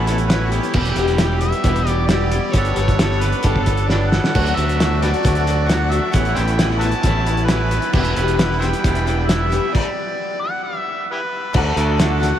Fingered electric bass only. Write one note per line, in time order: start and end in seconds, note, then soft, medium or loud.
0.00 0.58 A1 loud
0.74 0.93 E1 loud
0.96 1.52 E1 loud
1.64 2.38 E1 loud
2.54 2.73 G1 medium
2.77 3.32 G1 medium
3.45 4.18 G1 loud
4.35 4.53 D2 loud
4.57 5.12 D2 medium
5.25 5.98 D2 loud
6.14 6.33 A1 loud
6.37 6.92 A1 loud
7.04 7.78 A1 medium
7.93 8.12 E1 loud
8.17 8.72 E1 medium
8.84 9.58 E1 loud
11.55 11.73 D2 loud
11.76 12.31 D2 medium